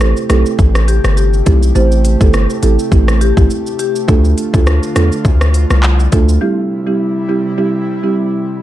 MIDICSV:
0, 0, Header, 1, 6, 480
1, 0, Start_track
1, 0, Key_signature, 0, "minor"
1, 0, Tempo, 582524
1, 1445, Time_signature, 4, 2, 24, 8
1, 7105, End_track
2, 0, Start_track
2, 0, Title_t, "Marimba"
2, 0, Program_c, 0, 12
2, 244, Note_on_c, 0, 69, 73
2, 349, Note_off_c, 0, 69, 0
2, 724, Note_on_c, 0, 67, 78
2, 829, Note_off_c, 0, 67, 0
2, 965, Note_on_c, 0, 67, 84
2, 1317, Note_off_c, 0, 67, 0
2, 1446, Note_on_c, 0, 72, 93
2, 1550, Note_off_c, 0, 72, 0
2, 1822, Note_on_c, 0, 69, 70
2, 1903, Note_off_c, 0, 69, 0
2, 2166, Note_on_c, 0, 69, 76
2, 2270, Note_off_c, 0, 69, 0
2, 2646, Note_on_c, 0, 67, 81
2, 2750, Note_off_c, 0, 67, 0
2, 3125, Note_on_c, 0, 67, 79
2, 3230, Note_off_c, 0, 67, 0
2, 7105, End_track
3, 0, Start_track
3, 0, Title_t, "Marimba"
3, 0, Program_c, 1, 12
3, 243, Note_on_c, 1, 57, 71
3, 244, Note_on_c, 1, 60, 68
3, 246, Note_on_c, 1, 64, 67
3, 248, Note_on_c, 1, 67, 83
3, 415, Note_off_c, 1, 57, 0
3, 415, Note_off_c, 1, 60, 0
3, 416, Note_off_c, 1, 64, 0
3, 417, Note_off_c, 1, 67, 0
3, 1202, Note_on_c, 1, 57, 82
3, 1203, Note_on_c, 1, 60, 76
3, 1205, Note_on_c, 1, 64, 76
3, 1207, Note_on_c, 1, 67, 85
3, 1427, Note_off_c, 1, 57, 0
3, 1427, Note_off_c, 1, 60, 0
3, 1428, Note_off_c, 1, 64, 0
3, 1429, Note_off_c, 1, 67, 0
3, 1442, Note_on_c, 1, 57, 93
3, 1443, Note_on_c, 1, 60, 87
3, 1446, Note_on_c, 1, 64, 83
3, 1448, Note_on_c, 1, 67, 104
3, 1786, Note_off_c, 1, 57, 0
3, 1787, Note_off_c, 1, 60, 0
3, 1788, Note_off_c, 1, 64, 0
3, 1789, Note_off_c, 1, 67, 0
3, 1816, Note_on_c, 1, 57, 72
3, 1819, Note_on_c, 1, 60, 71
3, 1820, Note_on_c, 1, 64, 69
3, 1822, Note_on_c, 1, 67, 84
3, 1970, Note_off_c, 1, 57, 0
3, 1971, Note_off_c, 1, 60, 0
3, 1971, Note_off_c, 1, 64, 0
3, 1972, Note_off_c, 1, 67, 0
3, 2162, Note_on_c, 1, 57, 75
3, 2163, Note_on_c, 1, 60, 66
3, 2164, Note_on_c, 1, 64, 72
3, 2167, Note_on_c, 1, 67, 87
3, 2334, Note_off_c, 1, 57, 0
3, 2335, Note_off_c, 1, 60, 0
3, 2335, Note_off_c, 1, 64, 0
3, 2336, Note_off_c, 1, 67, 0
3, 2402, Note_on_c, 1, 57, 89
3, 2403, Note_on_c, 1, 60, 83
3, 2405, Note_on_c, 1, 64, 83
3, 2407, Note_on_c, 1, 67, 97
3, 2574, Note_off_c, 1, 57, 0
3, 2575, Note_off_c, 1, 60, 0
3, 2576, Note_off_c, 1, 64, 0
3, 2577, Note_off_c, 1, 67, 0
3, 2777, Note_on_c, 1, 57, 74
3, 2778, Note_on_c, 1, 60, 69
3, 2780, Note_on_c, 1, 64, 73
3, 2782, Note_on_c, 1, 67, 83
3, 2930, Note_off_c, 1, 57, 0
3, 2931, Note_off_c, 1, 60, 0
3, 2932, Note_off_c, 1, 64, 0
3, 2933, Note_off_c, 1, 67, 0
3, 3362, Note_on_c, 1, 57, 100
3, 3363, Note_on_c, 1, 62, 85
3, 3366, Note_on_c, 1, 65, 86
3, 3367, Note_on_c, 1, 69, 110
3, 3706, Note_off_c, 1, 57, 0
3, 3706, Note_off_c, 1, 62, 0
3, 3708, Note_off_c, 1, 65, 0
3, 3708, Note_off_c, 1, 69, 0
3, 3736, Note_on_c, 1, 57, 75
3, 3738, Note_on_c, 1, 62, 68
3, 3740, Note_on_c, 1, 65, 71
3, 3742, Note_on_c, 1, 69, 87
3, 3890, Note_off_c, 1, 57, 0
3, 3890, Note_off_c, 1, 62, 0
3, 3892, Note_off_c, 1, 65, 0
3, 3892, Note_off_c, 1, 69, 0
3, 4082, Note_on_c, 1, 57, 77
3, 4085, Note_on_c, 1, 62, 67
3, 4086, Note_on_c, 1, 65, 69
3, 4088, Note_on_c, 1, 69, 85
3, 4254, Note_off_c, 1, 57, 0
3, 4255, Note_off_c, 1, 62, 0
3, 4256, Note_off_c, 1, 65, 0
3, 4257, Note_off_c, 1, 69, 0
3, 5042, Note_on_c, 1, 57, 81
3, 5044, Note_on_c, 1, 62, 74
3, 5046, Note_on_c, 1, 65, 74
3, 5047, Note_on_c, 1, 69, 93
3, 5267, Note_off_c, 1, 57, 0
3, 5268, Note_off_c, 1, 62, 0
3, 5269, Note_off_c, 1, 65, 0
3, 5269, Note_off_c, 1, 69, 0
3, 5283, Note_on_c, 1, 55, 95
3, 5285, Note_on_c, 1, 60, 92
3, 5286, Note_on_c, 1, 64, 89
3, 5288, Note_on_c, 1, 67, 101
3, 5626, Note_off_c, 1, 55, 0
3, 5627, Note_off_c, 1, 60, 0
3, 5628, Note_off_c, 1, 64, 0
3, 5629, Note_off_c, 1, 67, 0
3, 5658, Note_on_c, 1, 55, 78
3, 5660, Note_on_c, 1, 60, 73
3, 5661, Note_on_c, 1, 64, 70
3, 5663, Note_on_c, 1, 67, 81
3, 5811, Note_off_c, 1, 55, 0
3, 5811, Note_off_c, 1, 60, 0
3, 5812, Note_off_c, 1, 64, 0
3, 5813, Note_off_c, 1, 67, 0
3, 6004, Note_on_c, 1, 55, 77
3, 6006, Note_on_c, 1, 60, 69
3, 6007, Note_on_c, 1, 64, 70
3, 6009, Note_on_c, 1, 67, 86
3, 6175, Note_off_c, 1, 55, 0
3, 6176, Note_off_c, 1, 60, 0
3, 6177, Note_off_c, 1, 64, 0
3, 6178, Note_off_c, 1, 67, 0
3, 6244, Note_on_c, 1, 55, 93
3, 6245, Note_on_c, 1, 60, 79
3, 6247, Note_on_c, 1, 64, 82
3, 6249, Note_on_c, 1, 67, 105
3, 6415, Note_off_c, 1, 55, 0
3, 6416, Note_off_c, 1, 60, 0
3, 6417, Note_off_c, 1, 64, 0
3, 6418, Note_off_c, 1, 67, 0
3, 6618, Note_on_c, 1, 55, 76
3, 6620, Note_on_c, 1, 60, 70
3, 6621, Note_on_c, 1, 64, 70
3, 6623, Note_on_c, 1, 67, 89
3, 6770, Note_off_c, 1, 55, 0
3, 6771, Note_off_c, 1, 60, 0
3, 6772, Note_off_c, 1, 64, 0
3, 6773, Note_off_c, 1, 67, 0
3, 7105, End_track
4, 0, Start_track
4, 0, Title_t, "Analog synth pad"
4, 0, Program_c, 2, 89
4, 0, Note_on_c, 2, 48, 79
4, 0, Note_on_c, 2, 57, 72
4, 0, Note_on_c, 2, 67, 88
4, 3331, Note_off_c, 2, 48, 0
4, 3331, Note_off_c, 2, 67, 0
4, 3366, Note_on_c, 2, 50, 77
4, 3366, Note_on_c, 2, 65, 91
4, 5251, Note_off_c, 2, 57, 0
4, 5266, Note_off_c, 2, 50, 0
4, 5266, Note_off_c, 2, 65, 0
4, 5285, Note_on_c, 2, 55, 71
4, 5286, Note_on_c, 2, 64, 89
4, 5287, Note_on_c, 2, 48, 81
4, 7105, Note_off_c, 2, 48, 0
4, 7105, Note_off_c, 2, 55, 0
4, 7105, Note_off_c, 2, 64, 0
4, 7105, End_track
5, 0, Start_track
5, 0, Title_t, "808-style bass"
5, 0, Program_c, 3, 38
5, 0, Note_on_c, 3, 33, 93
5, 115, Note_off_c, 3, 33, 0
5, 245, Note_on_c, 3, 35, 94
5, 366, Note_off_c, 3, 35, 0
5, 484, Note_on_c, 3, 33, 109
5, 821, Note_off_c, 3, 33, 0
5, 860, Note_on_c, 3, 31, 93
5, 1171, Note_off_c, 3, 31, 0
5, 1207, Note_on_c, 3, 35, 92
5, 1422, Note_off_c, 3, 35, 0
5, 1446, Note_on_c, 3, 33, 115
5, 1782, Note_off_c, 3, 33, 0
5, 1819, Note_on_c, 3, 31, 97
5, 2035, Note_off_c, 3, 31, 0
5, 2166, Note_on_c, 3, 33, 91
5, 2287, Note_off_c, 3, 33, 0
5, 2404, Note_on_c, 3, 33, 95
5, 2741, Note_off_c, 3, 33, 0
5, 2778, Note_on_c, 3, 33, 99
5, 2874, Note_off_c, 3, 33, 0
5, 3365, Note_on_c, 3, 38, 114
5, 3581, Note_off_c, 3, 38, 0
5, 3739, Note_on_c, 3, 38, 95
5, 3955, Note_off_c, 3, 38, 0
5, 4086, Note_on_c, 3, 40, 84
5, 4206, Note_off_c, 3, 40, 0
5, 4324, Note_on_c, 3, 38, 101
5, 4661, Note_off_c, 3, 38, 0
5, 4700, Note_on_c, 3, 36, 96
5, 5011, Note_off_c, 3, 36, 0
5, 5047, Note_on_c, 3, 38, 100
5, 5262, Note_off_c, 3, 38, 0
5, 7105, End_track
6, 0, Start_track
6, 0, Title_t, "Drums"
6, 4, Note_on_c, 9, 82, 70
6, 6, Note_on_c, 9, 37, 90
6, 87, Note_off_c, 9, 82, 0
6, 89, Note_off_c, 9, 37, 0
6, 138, Note_on_c, 9, 82, 52
6, 221, Note_off_c, 9, 82, 0
6, 245, Note_on_c, 9, 37, 96
6, 245, Note_on_c, 9, 42, 80
6, 245, Note_on_c, 9, 82, 57
6, 327, Note_off_c, 9, 37, 0
6, 327, Note_off_c, 9, 42, 0
6, 327, Note_off_c, 9, 82, 0
6, 379, Note_on_c, 9, 82, 74
6, 462, Note_off_c, 9, 82, 0
6, 484, Note_on_c, 9, 36, 94
6, 486, Note_on_c, 9, 82, 76
6, 567, Note_off_c, 9, 36, 0
6, 568, Note_off_c, 9, 82, 0
6, 620, Note_on_c, 9, 37, 88
6, 621, Note_on_c, 9, 82, 56
6, 702, Note_off_c, 9, 37, 0
6, 704, Note_off_c, 9, 82, 0
6, 726, Note_on_c, 9, 42, 71
6, 726, Note_on_c, 9, 82, 51
6, 809, Note_off_c, 9, 42, 0
6, 809, Note_off_c, 9, 82, 0
6, 861, Note_on_c, 9, 37, 86
6, 861, Note_on_c, 9, 82, 61
6, 943, Note_off_c, 9, 82, 0
6, 944, Note_off_c, 9, 37, 0
6, 966, Note_on_c, 9, 82, 80
6, 1049, Note_off_c, 9, 82, 0
6, 1101, Note_on_c, 9, 82, 48
6, 1183, Note_off_c, 9, 82, 0
6, 1205, Note_on_c, 9, 42, 77
6, 1205, Note_on_c, 9, 82, 52
6, 1207, Note_on_c, 9, 36, 89
6, 1287, Note_off_c, 9, 42, 0
6, 1287, Note_off_c, 9, 82, 0
6, 1290, Note_off_c, 9, 36, 0
6, 1341, Note_on_c, 9, 82, 76
6, 1423, Note_off_c, 9, 82, 0
6, 1446, Note_on_c, 9, 82, 74
6, 1528, Note_off_c, 9, 82, 0
6, 1580, Note_on_c, 9, 82, 51
6, 1662, Note_off_c, 9, 82, 0
6, 1687, Note_on_c, 9, 42, 81
6, 1687, Note_on_c, 9, 82, 59
6, 1769, Note_off_c, 9, 42, 0
6, 1769, Note_off_c, 9, 82, 0
6, 1819, Note_on_c, 9, 36, 93
6, 1821, Note_on_c, 9, 82, 79
6, 1901, Note_off_c, 9, 36, 0
6, 1903, Note_off_c, 9, 82, 0
6, 1925, Note_on_c, 9, 82, 71
6, 1927, Note_on_c, 9, 37, 90
6, 2008, Note_off_c, 9, 82, 0
6, 2009, Note_off_c, 9, 37, 0
6, 2060, Note_on_c, 9, 82, 53
6, 2142, Note_off_c, 9, 82, 0
6, 2165, Note_on_c, 9, 42, 86
6, 2165, Note_on_c, 9, 82, 59
6, 2247, Note_off_c, 9, 42, 0
6, 2247, Note_off_c, 9, 82, 0
6, 2300, Note_on_c, 9, 82, 72
6, 2383, Note_off_c, 9, 82, 0
6, 2404, Note_on_c, 9, 36, 96
6, 2406, Note_on_c, 9, 82, 72
6, 2486, Note_off_c, 9, 36, 0
6, 2488, Note_off_c, 9, 82, 0
6, 2540, Note_on_c, 9, 37, 91
6, 2541, Note_on_c, 9, 82, 52
6, 2622, Note_off_c, 9, 37, 0
6, 2623, Note_off_c, 9, 82, 0
6, 2647, Note_on_c, 9, 42, 69
6, 2647, Note_on_c, 9, 82, 53
6, 2729, Note_off_c, 9, 42, 0
6, 2729, Note_off_c, 9, 82, 0
6, 2778, Note_on_c, 9, 36, 97
6, 2780, Note_on_c, 9, 82, 60
6, 2860, Note_off_c, 9, 36, 0
6, 2863, Note_off_c, 9, 82, 0
6, 2887, Note_on_c, 9, 82, 80
6, 2969, Note_off_c, 9, 82, 0
6, 3021, Note_on_c, 9, 82, 49
6, 3103, Note_off_c, 9, 82, 0
6, 3125, Note_on_c, 9, 42, 77
6, 3125, Note_on_c, 9, 82, 57
6, 3207, Note_off_c, 9, 42, 0
6, 3207, Note_off_c, 9, 82, 0
6, 3261, Note_on_c, 9, 82, 77
6, 3343, Note_off_c, 9, 82, 0
6, 3365, Note_on_c, 9, 36, 124
6, 3366, Note_on_c, 9, 82, 76
6, 3448, Note_off_c, 9, 36, 0
6, 3448, Note_off_c, 9, 82, 0
6, 3500, Note_on_c, 9, 82, 51
6, 3582, Note_off_c, 9, 82, 0
6, 3606, Note_on_c, 9, 42, 86
6, 3606, Note_on_c, 9, 82, 62
6, 3689, Note_off_c, 9, 42, 0
6, 3689, Note_off_c, 9, 82, 0
6, 3739, Note_on_c, 9, 36, 95
6, 3741, Note_on_c, 9, 82, 85
6, 3821, Note_off_c, 9, 36, 0
6, 3823, Note_off_c, 9, 82, 0
6, 3846, Note_on_c, 9, 82, 69
6, 3848, Note_on_c, 9, 37, 92
6, 3928, Note_off_c, 9, 82, 0
6, 3930, Note_off_c, 9, 37, 0
6, 3980, Note_on_c, 9, 82, 53
6, 4062, Note_off_c, 9, 82, 0
6, 4086, Note_on_c, 9, 37, 93
6, 4086, Note_on_c, 9, 42, 81
6, 4086, Note_on_c, 9, 82, 61
6, 4168, Note_off_c, 9, 37, 0
6, 4169, Note_off_c, 9, 42, 0
6, 4169, Note_off_c, 9, 82, 0
6, 4221, Note_on_c, 9, 82, 74
6, 4303, Note_off_c, 9, 82, 0
6, 4324, Note_on_c, 9, 36, 95
6, 4326, Note_on_c, 9, 82, 77
6, 4407, Note_off_c, 9, 36, 0
6, 4408, Note_off_c, 9, 82, 0
6, 4459, Note_on_c, 9, 37, 88
6, 4460, Note_on_c, 9, 82, 55
6, 4541, Note_off_c, 9, 37, 0
6, 4543, Note_off_c, 9, 82, 0
6, 4566, Note_on_c, 9, 42, 73
6, 4566, Note_on_c, 9, 82, 51
6, 4649, Note_off_c, 9, 42, 0
6, 4649, Note_off_c, 9, 82, 0
6, 4701, Note_on_c, 9, 37, 89
6, 4701, Note_on_c, 9, 82, 64
6, 4783, Note_off_c, 9, 37, 0
6, 4783, Note_off_c, 9, 82, 0
6, 4805, Note_on_c, 9, 39, 93
6, 4807, Note_on_c, 9, 82, 76
6, 4888, Note_off_c, 9, 39, 0
6, 4889, Note_off_c, 9, 82, 0
6, 4941, Note_on_c, 9, 82, 45
6, 5023, Note_off_c, 9, 82, 0
6, 5045, Note_on_c, 9, 42, 75
6, 5045, Note_on_c, 9, 82, 55
6, 5047, Note_on_c, 9, 36, 90
6, 5127, Note_off_c, 9, 42, 0
6, 5127, Note_off_c, 9, 82, 0
6, 5130, Note_off_c, 9, 36, 0
6, 5181, Note_on_c, 9, 82, 82
6, 5263, Note_off_c, 9, 82, 0
6, 7105, End_track
0, 0, End_of_file